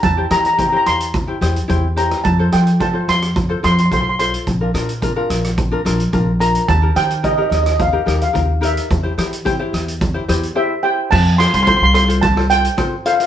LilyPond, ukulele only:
\new Staff \with { instrumentName = "Ukulele" } { \time 4/4 \key f \major \tempo 4 = 108 << { r1 | r1 | r1 | r1 |
r2 r8 c''8 g''4 | r1 | } \\ { r16 <e' g' c''>16 <e' g' c''>16 r16 <e' g' c''>16 <e' g' c''>8 r8 <e' g' c''>16 <e' g' c''>16 r16 <e' g' c''>16 r16 <e' g' c''>8 | r16 <f' a' c''>16 <f' a' c''>16 r16 <f' a' c''>16 <f' a' c''>8 r8 <f' a' c''>16 <f' a' c''>16 r16 <f' a' c''>16 r16 <f' a' c''>8 | r16 <d' f' bes'>16 <d' f' bes'>16 r16 <d' f' bes'>16 <d' f' bes'>8 r8 <d' f' bes'>16 <d' f' bes'>16 r16 <d' f' bes'>16 r16 <d' f' bes'>8 | r16 <ees' g' bes'>16 <ees' g' bes'>16 r16 <ees' g' bes'>16 <ees' g' bes'>8 r8 <ees' g' bes'>16 <ees' g' bes'>16 r16 <ees' g' bes'>16 r16 <ees' g' bes'>8 |
r16 <e' g' c''>16 <e' g' c''>16 r16 <e' g' c''>16 <e' g' c''>8 r8 <e' g' c''>16 <e' g' c''>16 r16 <e' g' c''>16 r16 <e' g' c''>8 | r8 <f' a' c''>16 r16 <f' a' c''>16 r16 <f' a' c''>16 <f' a' c''>16 r16 <f' a' c''>16 <f' a' c''>16 r16 <f' a' c''>16 r16 <f' a' c''>8 | } >> }